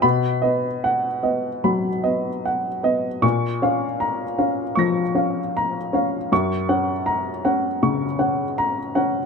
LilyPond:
<<
  \new Staff \with { instrumentName = "Upright piano" } { \time 4/4 \key bes \phrygian \tempo 4 = 78 << { b''4 r2. | des'''4 r4 <des''' bes'''>2 | des'''4 r2. | } \\ { r8 dis''8 fis''8 dis''8 b''8 dis''8 fis''8 dis''8 | r8 f''8 bes''8 f''4 f''8 bes''8 f''8 | r8 ges''8 bes''8 ges''8 des'''8 ges''8 bes''8 ges''8 | } >> }
  \new Staff \with { instrumentName = "Upright piano" } { \time 4/4 \key bes \phrygian b,8 b4 b8 fis8 b4 b8 | bes,8 des'4 des'8 f8 des'4 des'8 | ges,8 des'4 des'8 des8 des'4 des'8 | }
>>